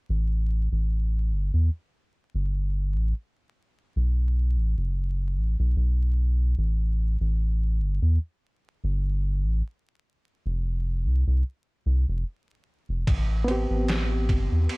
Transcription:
0.09 0.68 A1 medium
0.72 1.33 A1 medium
1.31 1.51 G1 medium
1.53 1.70 E2 medium
2.34 2.95 G1 medium
2.94 3.13 A1 loud
3.96 4.57 B1 medium
4.55 4.75 A1 medium
4.77 5.38 F#1 medium
5.36 5.56 A1 medium
5.59 5.75 B1 medium
5.76 6.54 B1 medium
6.58 7.16 A1 medium
7.20 7.81 A1 medium
7.80 7.99 G1 medium
8.02 8.18 E2 medium
8.84 9.44 G1 medium
9.43 9.62 A1 medium
10.46 11.06 F1 medium
11.05 11.24 C2 medium
11.27 11.43 C2 medium
11.86 12.05 C2 medium
12.08 12.24 F1 medium
12.89 13.05 F1 medium
13.07 13.66 A1 medium
13.07 kick loud
13.07 ride medium
13.44 14.77 B3 medium
13.44 14.77 C4 medium
13.44 ride medium
13.51 14.77 G4 medium
13.70 14.31 A1 medium
13.88 snare loud
13.88 ride medium
14.29 14.48 G1 medium
14.29 kick medium
14.29 ride medium
14.52 14.67 E2 medium
14.69 ride medium

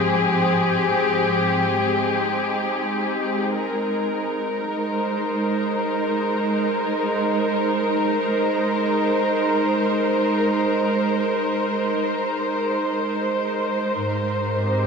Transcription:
0.00 1.79 G#2 medium
0.00 1.78 F3 medium
0.00 4.55 C4 medium
0.00 3.50 G4 medium
0.00 4.23 G#4 medium
1.77 13.97 G#3 medium
2.08 14.87 D#4 medium
3.56 14.87 A#4 medium
4.78 14.87 C5 medium
14.00 14.87 G#2 medium
14.56 14.87 C4 medium
14.56 14.87 G4 medium

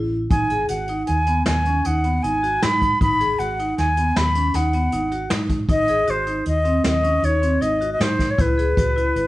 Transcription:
0.00 0.26 A1 medium
0.00 0.18 E4 medium
0.31 0.64 G#1 medium
0.31 0.44 D#4 medium
0.31 0.67 G#5 medium
0.31 kick medium
0.31 closed hi-hat medium
0.50 0.63 G#4 medium
0.50 closed hi-hat medium
0.68 1.03 G#1 medium
0.68 0.82 F#4 medium
0.68 1.05 F#5 medium
0.68 closed hi-hat medium
0.87 1.15 D#4 medium
0.87 closed hi-hat medium
1.07 1.42 D#2 medium
1.07 1.43 G#5 medium
1.07 closed hi-hat medium
1.26 1.53 B3 medium
1.26 closed hi-hat soft
1.46 1.80 D#2 medium
1.46 1.88 G#5 medium
1.46 snare medium
1.46 closed hi-hat medium
1.65 1.79 C#4 medium
1.65 closed hi-hat medium
1.84 2.19 D#2 medium
1.84 1.98 D#4 medium
1.84 2.24 F#5 medium
1.84 closed hi-hat medium
2.04 2.17 B3 medium
2.04 closed hi-hat medium
2.23 2.57 G#1 medium
2.23 2.36 D#4 medium
2.23 2.64 G#5 medium
2.23 closed hi-hat medium
2.43 2.56 F#4 medium
2.43 closed hi-hat soft
2.62 2.96 G#2 medium
2.62 2.88 D#4 medium
2.62 3.01 B5 medium
2.62 snare medium
2.62 closed hi-hat medium
2.82 kick medium
2.82 closed hi-hat soft
3.01 3.34 G#1 medium
3.01 3.13 D#4 medium
3.01 3.40 B5 loud
3.01 kick medium
3.01 closed hi-hat medium
3.20 3.33 G#4 medium
3.20 closed hi-hat medium
3.39 3.72 G#1 medium
3.39 3.53 F#4 medium
3.39 3.77 F#5 medium
3.39 closed hi-hat medium
3.59 3.84 D#4 medium
3.59 closed hi-hat soft
3.78 4.11 D#2 medium
3.78 4.18 G#5 medium
3.78 snare soft
3.78 closed hi-hat medium
3.97 4.23 B3 medium
3.97 closed hi-hat medium
4.16 4.49 D#2 medium
4.16 4.57 B5 medium
4.16 snare medium
4.16 closed hi-hat medium
4.35 4.48 C#4 medium
4.35 closed hi-hat medium
4.54 4.87 D#2 medium
4.54 4.67 D#4 medium
4.54 5.32 F#5 medium
4.54 snare soft
4.54 closed hi-hat medium
4.73 4.87 B3 medium
4.73 closed hi-hat medium
4.92 5.26 G#1 medium
4.92 5.05 D#4 medium
4.92 closed hi-hat medium
5.11 5.24 F#4 medium
5.11 closed hi-hat medium
5.30 5.64 G#2 medium
5.30 5.56 D#4 medium
5.30 snare medium
5.30 closed hi-hat medium
5.49 kick medium
5.49 closed hi-hat soft
5.68 6.02 G#1 medium
5.68 5.82 D#4 medium
5.68 6.12 D#5 loud
5.68 kick medium
5.68 closed hi-hat medium
5.88 6.02 G#4 medium
5.88 closed hi-hat medium
6.07 6.41 G#1 medium
6.07 6.20 F#4 medium
6.07 6.47 C5 medium
6.07 closed hi-hat medium
6.26 6.52 D#4 medium
6.26 closed hi-hat soft
6.45 6.79 D#2 medium
6.45 6.83 D#5 medium
6.45 closed hi-hat medium
6.65 6.90 C4 medium
6.65 closed hi-hat medium
6.84 7.18 D#2 medium
6.84 7.26 D#5 medium
6.84 snare medium
6.84 closed hi-hat medium
7.03 7.16 C#4 medium
7.03 closed hi-hat medium
7.22 7.56 D#2 medium
7.22 7.35 D#4 medium
7.22 7.63 C#5 medium
7.22 closed hi-hat medium
7.42 7.55 C4 medium
7.42 closed hi-hat medium
7.61 7.95 G#1 medium
7.61 7.74 D#4 medium
7.61 7.91 D#5 medium
7.61 closed hi-hat medium
7.81 7.94 F#4 medium
7.81 closed hi-hat medium
7.93 8.03 D#5 medium
7.99 8.33 G#2 medium
7.99 8.25 D#4 medium
7.99 8.32 C5 medium
7.99 snare loud
7.99 closed hi-hat medium
8.19 kick medium
8.19 snare soft
8.19 closed hi-hat medium
8.31 8.42 C#5 medium
8.38 8.72 C#2 medium
8.38 8.51 E4 medium
8.38 9.27 B4 medium
8.38 kick medium
8.38 closed hi-hat medium
8.58 8.70 G#4 medium
8.58 closed hi-hat medium
8.77 9.10 C#2 medium
8.77 8.90 F#4 medium
8.77 kick medium
8.77 closed hi-hat medium
8.96 9.21 E4 medium
8.96 closed hi-hat soft
9.16 9.27 G#1 medium
9.16 closed hi-hat medium

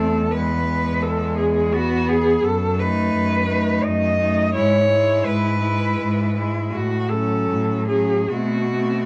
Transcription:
0.00 2.40 E2 soft
0.00 0.31 A3 soft
0.00 0.30 C4 soft
0.00 0.33 A4 medium
0.31 0.66 G#3 soft
0.31 1.69 B3 soft
0.31 1.04 B4 medium
0.68 1.74 G#3 soft
1.02 1.37 A4 medium
1.38 1.74 G#4 medium
1.72 2.42 B3 soft
1.72 2.44 B3 soft
1.72 2.10 F#4 medium
2.09 2.46 G#4 medium
2.44 3.06 F#2 medium
2.44 2.81 A4 medium
2.79 3.47 A3 soft
2.79 3.46 D#4 soft
2.79 3.85 B4 medium
3.14 3.75 F#2 soft
3.47 4.18 A3 soft
3.47 4.17 D#4 soft
3.83 4.47 F#2 soft
3.83 4.54 D#5 medium
4.19 4.54 A3 soft
4.19 4.53 D#4 soft
4.54 5.17 G#2 medium
4.54 4.90 G#3 soft
4.54 4.88 E4 soft
4.54 5.27 C#5 medium
4.89 5.61 G#3 soft
4.89 5.61 E4 soft
5.25 5.91 G#2 soft
5.25 6.36 B4 medium
5.62 6.36 G#3 soft
5.62 6.35 E4 soft
6.00 6.65 G#2 soft
6.37 6.73 G#3 soft
6.37 6.73 E4 soft
6.72 7.41 A2 soft
6.72 7.11 F#4 medium
7.10 7.88 F#3 soft
7.10 7.88 C#4 soft
7.10 7.88 A4 medium
7.50 8.20 A2 soft
7.88 8.30 F#3 soft
7.88 8.29 C#4 soft
7.88 8.31 G#4 soft
8.29 9.05 B2 soft
8.29 8.72 A3 soft
8.29 8.72 C4 soft
8.29 9.05 F#4 medium
8.73 9.05 A3 soft
8.73 9.05 C4 soft

